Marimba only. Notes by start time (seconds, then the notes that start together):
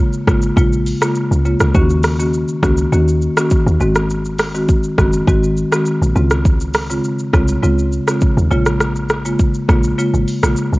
0.27 C#3 G#3 A#3 F4
0.57 C#3 G#3 A#3 F4
1.01 C#3 G#3 A#3 F4
1.45 C#3 G#3 A#3 F4
1.75 D#3 A#3 C#4 F#4
2.19 D#3 A#3 C#4 F#4
2.63 D#3 A#3 C#4 F#4
2.92 D#3 A#3 C#4 F#4
3.37 D#3 A#3 C#4 F#4
3.80 D#3 G#3 C4 F#4
4.54 D#3 G#3 C4 F#4
4.98 D#3 G#3 C4 F#4
5.27 D#3 G#3 C4 F#4
5.72 D#3 G#3 C4 F#4
6.15 C#3 G#3 C4 F4
6.90 C#3 G#3 C4 F4
7.33 C#3 G#3 C4 F4
7.62 C#3 G#3 C4 F4
8.07 C#3 G#3 C4 F4
8.51 C#3 G#3 A#3 F4
9.25 C#3 G#3 A#3 F4
9.69 C#3 G#3 A#3 F4
9.98 C#3 G#3 A#3 F4
10.43 C#3 G#3 A#3 F4